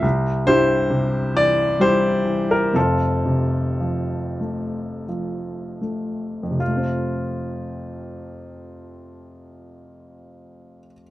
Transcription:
0.02 C2
0.46 G2 E4 G4 C5
0.90 C3
1.34 E3 D5
1.79 G3 E4 G4 C5
2.25 E3
2.51 A#4
2.73 F1 F2 C4 F4 A4
3.26 C3
3.80 F3
4.41 A3
5.08 F3
5.81 A3
6.43 F2
6.51 C3
6.59 F3 F4
6.68 A3
6.76 C4

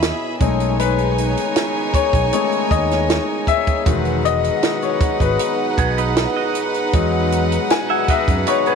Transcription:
Already playing: D#2 B2 B3 C#4 E4 G#4 E5 B5
0.02 snare, closed hi-hat
0.40 B1 C#3 D#3 G#3 A3 B3 C#4 D#4 G#4 C#5 G#5, kick, closed hi-hat
0.60 closed hi-hat
0.79 B4, closed hi-hat
0.98 closed hi-hat
1.18 closed hi-hat
1.37 closed hi-hat
1.56 snare, closed hi-hat
1.94 C#5, muted fingered electric bass stroke, kick, closed hi-hat
2.13 B1, kick, closed hi-hat
2.33 G#3 A3 C#4 D#4 C#5, closed hi-hat
2.52 closed hi-hat
2.71 D#2 D#5, kick, closed hi-hat
2.91 snare, closed hi-hat
3.10 snare, closed hi-hat
3.47 E5, kick, closed hi-hat
3.67 kick, closed hi-hat
3.85 E1 B2 D#3 F#3 G#3 D#4 B4 F#5, kick, closed hi-hat
4.05 closed hi-hat
4.25 D#5, closed hi-hat
4.44 closed hi-hat
4.63 snare, closed hi-hat
4.82 C#5, closed hi-hat
5.01 muted fingered electric bass stroke, kick, closed hi-hat
5.20 G#1 B4, kick, closed hi-hat
5.39 closed hi-hat
5.78 B1 B3 G#4, kick, closed hi-hat
5.98 D#4 B4, closed hi-hat
6.16 snare, closed hi-hat
6.37 F#4 D#5
6.55 closed hi-hat
6.74 closed hi-hat
6.93 E2 F#3 G#3 D#4, kick, closed hi-hat
7.32 closed hi-hat
7.52 closed hi-hat
7.70 G#5, snare, closed hi-hat
7.90 G#4 E5 F#5
8.08 F#4 D#5 E5, muted fingered electric bass stroke, kick, closed hi-hat
8.28 F#2, kick, closed hi-hat
8.47 D#4 B4 C#5, closed hi-hat
8.66 B3 G#4 B4, closed hi-hat

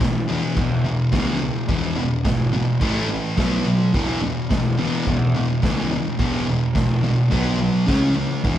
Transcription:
0.00 E1 E2 B2, kick, snare, crash
0.28 E2 B2 E3
0.57 E2 B2, kick, crash
0.84 E2 B2
1.12 C#2 E2 B2 E3, kick, snare, crash
1.41 E2 B2
1.69 E1 E2 B2 E3, kick, crash
1.96 E2 B2
2.25 G#1 E2 B2, kick, snare, crash
2.53 E2 B2
2.81 A1 A2 E3 A3, kick, crash
3.10 A2 E3
3.37 B1 B2 F#3 B3, kick, snare, crash
3.65 B2 F#3
3.94 E1 E2 B2 E3, kick, crash
4.22 E2 B2
4.50 E1 E2 B2, kick, snare, crash
4.78 E2 B2 E3
5.07 E2 B2, kick, crash
5.35 E2 B2
5.62 C#2 E2 B2 E3, kick, snare, crash
5.91 E2 B2
6.19 E1 E2 B2 E3, kick, crash
6.47 E2 B2
6.75 A#1 E2 B2, kick, snare, crash
7.03 E2 B2
7.31 B1 B2 F#3 B3, kick, crash
7.59 B2 F#3
7.87 C#2 C#3 G#3 C#4, kick, snare, crash
8.15 C#3 G#3
8.44 E1 E2 B2 E3, kick, crash

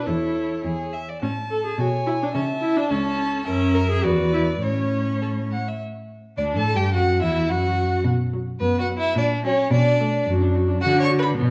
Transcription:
0.06 E2 E4 A4 C#5
0.64 E2 G#4
0.93 E5
1.09 D5
1.22 A2 C#4 A5
1.51 A4
1.65 G#4
1.78 B2 F#4 C#5 G#5
2.07 E4
2.23 D4
2.34 C#3 C#4 E5 A5
2.62 E4
2.77 D4
2.89 C#2 C#4 A4 A5
3.46 F#2 C#4 A#4 E5
3.75 A#4
3.90 G#4
4.03 E2 F#4 B4 D5
4.33 E4
4.62 A2 C#4 C#5
5.22 A4
5.52 F#5
5.68 E5
6.37 D2 D4 D5
6.56 A2 A4 A5
6.74 G2 G4 G5
6.93 F#2 F#4 F#5
7.21 E2 E4 E5
7.49 F#2 F#4 F#5
8.04 B2
8.34 F#3
8.60 F#2 B3 B4
8.79 F#4 F#5
8.89 F#3
8.97 E4 E5
9.15 A#2 D4 D5
9.45 F#3 C#4 C#5
9.70 B2 D4 D5
10.01 A3
10.26 F#2 F#4
10.41 D4
10.55 F#4
10.68 D4
10.81 D3 F#4 F#5
10.96 D4 C#5
11.04 C#6
11.10 F#4
11.19 B4 B5
11.25 D4
11.37 B2 B3

